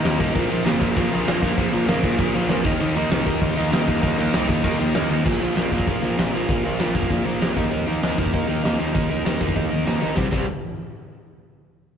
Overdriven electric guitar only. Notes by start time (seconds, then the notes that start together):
0.04 D#3 A#3 D#4
0.19 D#3 A#3 D#4
0.34 A#2 F3 A#3
0.49 A#2 F3 A#3
0.65 A#2 F3 A#3
0.80 A#2 F3 A#3
0.96 A#2 F3 A#3
1.12 A#2 F3 A#3
1.27 A#2 F3 A#3
1.42 A#2 F3 A#3
1.57 A#2 F3 A#3
1.72 A#2 F3 A#3
1.87 A#2 F3 A#3
2.03 A#2 F3 A#3
2.19 A#2 F3 A#3
2.34 A#2 F3 A#3
2.50 A#2 F3 A#3
2.65 D#3 A#3 D#4
2.80 D#3 A#3 D#4
2.96 D#3 A#3 D#4
3.11 D#3 A#3 D#4
3.26 D#3 A#3 D#4
3.41 D#3 A#3 D#4
3.56 D#3 A#3 D#4
3.72 D#3 A#3 D#4
3.87 D#3 A#3 D#4
4.02 D#3 A#3 D#4
4.17 D#3 A#3 D#4
4.34 D#3 A#3 D#4
4.48 D#3 A#3 D#4
4.64 D#3 A#3 D#4
4.79 D#3 A#3 D#4
4.95 D#3 A#3 D#4
5.10 D#3 A#3 D#4
5.25 A#2 F3 A#3
5.41 A#2 F3 A#3
5.56 A#2 F3 A#3
5.72 A#2 F3 A#3
5.87 A#2 F3 A#3
6.02 A#2 F3 A#3
6.18 A#2 F3 A#3
6.34 A#2 F3 A#3
6.49 A#2 F3 A#3
6.64 A#2 F3 A#3
6.80 A#2 F3 A#3
6.95 A#2 F3 A#3
7.11 A#2 F3 A#3
7.25 A#2 F3 A#3
7.41 A#2 F3 A#3
7.56 D#3 A#3 D#4
7.71 D#3 A#3 D#4
7.87 D#3 A#3 D#4
8.03 D#3 A#3 D#4
8.18 D#3 A#3 D#4
8.33 D#3 A#3 D#4
8.48 D#3 A#3 D#4
8.64 D#3 A#3 D#4
8.79 D#3 A#3 D#4
8.94 D#3 A#3 D#4
9.10 D#3 A#3 D#4
9.25 D#3 A#3 D#4
9.41 D#3 A#3 D#4
9.56 D#3 A#3 D#4
9.70 D#3 A#3 D#4
9.85 D#3 A#3 D#4
10.01 D#3 A#3 D#4
10.15 C3 G3 C4
10.32 C3 G3 C4